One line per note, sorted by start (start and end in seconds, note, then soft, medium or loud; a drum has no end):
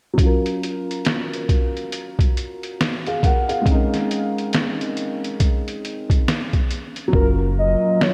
0.14 3.60 F#3 medium
0.18 3.62 C#4 medium
0.18 kick loud
0.18 closed hi-hat medium
0.22 3.64 F4 medium
0.22 2.79 A#4 medium
0.46 closed hi-hat soft
0.63 closed hi-hat medium
0.91 closed hi-hat soft
1.05 snare loud
1.05 closed hi-hat medium
1.33 closed hi-hat soft
1.49 kick medium
1.49 closed hi-hat medium
1.77 closed hi-hat soft
1.92 closed hi-hat medium
2.19 kick medium
2.19 closed hi-hat soft
2.37 closed hi-hat medium
2.63 closed hi-hat soft
2.81 snare loud
2.81 closed hi-hat medium
3.06 3.23 G#4 medium
3.06 3.22 F5 medium
3.06 closed hi-hat soft
3.23 3.49 A#4 soft
3.23 3.49 F#5 medium
3.23 kick medium
3.23 closed hi-hat medium
3.49 3.90 G#4 soft
3.49 3.90 F5 medium
3.49 closed hi-hat soft
3.62 6.64 G#3 medium
3.62 6.66 C4 medium
3.66 6.67 C#4 medium
3.66 kick loud
3.66 closed hi-hat medium
3.71 6.69 D#4 medium
3.71 6.70 A#4 medium
3.94 snare soft
3.94 closed hi-hat soft
4.11 closed hi-hat medium
4.38 closed hi-hat soft
4.53 snare medium
4.53 closed hi-hat medium
4.81 closed hi-hat soft
4.97 closed hi-hat medium
5.24 closed hi-hat soft
5.40 kick medium
5.40 closed hi-hat medium
5.68 closed hi-hat soft
5.85 closed hi-hat medium
6.10 kick medium
6.10 closed hi-hat soft
6.28 snare loud
6.28 closed hi-hat medium
6.53 kick medium
6.53 closed hi-hat soft
6.71 closed hi-hat medium
6.96 closed hi-hat soft
7.08 8.14 F#3 medium
7.12 7.76 F#1 loud
7.12 8.14 F#3 medium
7.12 8.14 A#3 medium
7.12 8.14 C#4 medium
7.12 8.14 F4 medium
7.12 7.28 A#4 loud
7.12 kick loud
7.16 8.14 F4 medium
7.20 8.14 A#4 medium
7.59 8.04 D#5 loud
8.01 8.14 C#5 loud
8.01 snare loud